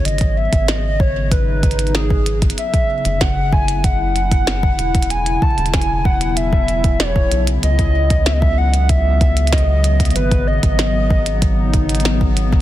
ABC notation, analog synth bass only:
X:1
M:4/4
L:1/16
Q:1/4=95
K:E
V:1 name="Analog synth bass" clef=bass
G,,,3 G,,,12- G,,, | z3 F,,,8- F,,,3 E,,,2- | E,,,2 z E,,,8- E,,,3 B,,,2 | C,,16 |
G,,,3 G,,,12- G,,, |]